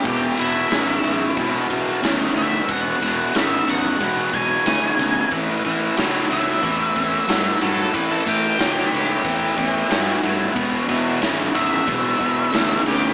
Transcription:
<<
  \new Staff \with { instrumentName = "Lead electric guitar" } { \time 4/4 \key a \major \tempo 4 = 91 g'8 e'2 r4 e''8 | fis''4 e''8 fis''4 gis''8 gis''4 | r4. e''2 a'8 | b'16 a'16 g'2. r8 |
r4. e''2 g'8 | }
  \new Staff \with { instrumentName = "Distorted electric guitar" } { \clef bass \time 4/4 \key a \major <e, b,>8 <e, b,>8 <e, cis>8 <e, cis>8 <e, b,>8 <e, b,>8 <e, cis>8 <e, cis>8 | <e, b,>8 <e, b,>8 <e, cis>8 <e, cis>8 <e, b,>8 <e, b,>8 <e, cis>8 <e, cis>8 | <a, e>8 <a, e>8 <a, fis>8 <a, fis>8 <a, e>8 <a, e>8 <a, fis>8 <a, fis>8 | <a, e>8 <a, e>8 <a, fis>8 <a, fis>8 <a, e>8 <a, e>8 <a, fis>8 <a, fis>8 |
<e, b,>8 <e, b,>8 <e, cis>8 <e, cis>8 <e, b,>8 <e, b,>8 <e, cis>8 <e, cis>8 | }
  \new Staff \with { instrumentName = "Fingered electric bass" } { \clef bass \time 4/4 \key a \major e,,8 e,,8 gis,,8 gis,,8 b,,8 b,,8 d,8 d,8 | e,,8 e,,8 gis,,8 gis,,8 b,,8 b,,8 d,8 d,8 | a,,8 a,,8 cis,8 cis,8 e,8 e,8 g,8 g,8 | a,,8 a,,8 cis,8 cis,8 e,8 e,8 g,8 g,8 |
e,,8 e,,8 gis,,8 gis,,8 b,,8 b,,8 d,8 d,8 | }
  \new DrumStaff \with { instrumentName = "Drums" } \drummode { \time 4/4 <bd cymr>8 cymr8 <cymr sn>8 cymr8 <bd cymr>8 <bd cymr>8 <cymr sn>8 cymr8 | <bd cymr>8 cymr8 <cymr sn>8 cymr8 <bd cymr>8 <bd cymr>8 <cymr sn>8 cymr16 bd16 | <bd cymr>8 cymr8 <cymr sn>8 cymr8 <bd cymr>8 <bd cymr>8 <cymr sn>8 cymr8 | <bd cymr>8 cymr8 <cymr sn>8 cymr8 <bd cymr>8 <bd cymr>8 <cymr sn>8 cymr16 bd16 |
<bd cymr>8 cymr8 <cymr sn>8 cymr8 <bd cymr>8 <bd cymr>8 <cymr sn>8 cymr8 | }
>>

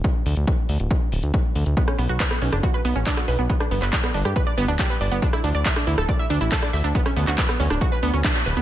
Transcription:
<<
  \new Staff \with { instrumentName = "Synth pluck" } { \time 4/4 \key b \minor \tempo 4 = 139 r1 | b16 cis'16 b16 fis'16 b'16 b16 cis'16 d'16 fis'16 b'16 b16 cis'16 d'16 fis'16 b'16 b16 | b16 d'16 b16 b'16 d''16 b16 d'16 g'16 b'16 d''16 b16 d'16 g'16 b'16 d''16 b16 | d'16 e'16 d'16 d''16 e''16 d'16 e'16 a'16 d''16 e''16 d'16 e'16 a'16 d''16 e''16 d'16 |
b16 cis'16 b16 fis'16 b'16 b16 cis'16 d'16 fis'16 b'16 b16 cis'16 d'16 fis'16 b'16 b16 | }
  \new Staff \with { instrumentName = "Analog synth bass" } { \clef bass \time 4/4 \key b \minor r8 d,16 d,16 r8 d,16 d,,16 r8 d,,16 d,16 r8 d,16 d,16 | r8 b,,16 b,,16 r8 b,,16 fis,,16 r8 b,,16 a,,16 r8 b,,16 b,,16 | r8 g,,16 g,,16 r8 g,,16 g,16 r8 g,,16 d,,16 r8 g,,16 g,,16 | r8 d,16 d,16 r8 d,16 d,,16 r8 d,16 a,,16 r8 d,16 d,16 |
r8 d,16 d,16 r8 d,16 d,,16 r8 d,16 d,16 r8 d,,16 d,16 | }
  \new DrumStaff \with { instrumentName = "Drums" } \drummode { \time 4/4 <hh bd>8 hho16 hh16 <hh bd>8 hho16 hh16 <hh bd>8 hho16 hh16 <hh bd>8 hho16 hh16 | <hh bd>16 ss16 hho16 hh16 <hc hh bd>16 ss16 hho16 <hh ss>16 <hh bd>8 hho16 hh16 <hc hh bd>16 ss16 hho16 hh16 | <hh bd>16 ss16 hho16 <hc hh>16 <hc hh bd>16 ss16 hho16 <hh ss>16 <hh bd>8 hho16 hh16 <hc hh bd>8 hho16 hh16 | <hh bd>16 ss16 hho16 hh16 <hc hh bd>16 ss16 hho16 <hh ss>16 <hh bd>8 hho16 hh16 <hc hh bd>16 ss16 hho16 hh16 |
<hh bd>16 ss16 hho16 <hc hh>16 <hc hh bd>16 ss16 hho16 <hh ss>16 <hh bd>8 hho16 hh16 <hc hh bd>8 hho16 hh16 | }
>>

